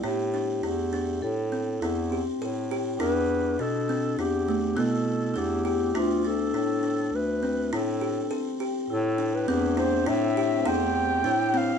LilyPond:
<<
  \new Staff \with { instrumentName = "Clarinet" } { \time 5/4 \key a \minor \tempo 4 = 102 r1 r4 | b'4 a'4 g'4 a'4 g'4 | f'8 a'4. b'4 a'4. r8 | a'8. b'8. c''8 e''4 g''4. f''8 | }
  \new Staff \with { instrumentName = "Kalimba" } { \time 5/4 \key a \minor e'8 d'8 e'8 d'4 c'8 e'8 g'8 a'8 g'8 | e'4 d'8 c'8 e'8 a8 b4 d'8 g'8 | e'8 d'8 e'8 d'4 c'8 e'8 g'8 a'8 g'8 | r8 d'8 c'8 e'8 e'8 g'8 e'4 d'8 c'8 | }
  \new Staff \with { instrumentName = "Vibraphone" } { \time 5/4 \key a \minor g'2 a'4 e'8 c'4. | d'2. e'4 e'4 | d'1 c'4 | e'4 d'2 c'4 e'4 | }
  \new Staff \with { instrumentName = "String section" } { \time 5/4 \key a \minor r1 r4 | r1 r4 | r1 r4 | <a c' g'>1~ <a c' g'>4 | }
  \new Staff \with { instrumentName = "Bass clarinet" } { \clef bass \time 5/4 \key a \minor a,4 e,4 a,4 e,4 a,4 | e,4 b,4 e,4 b,4 e,4 | d,4 a,4 d,4 a,4 r4 | a,4 e,4 a,4 e,4 a,4 | }
>>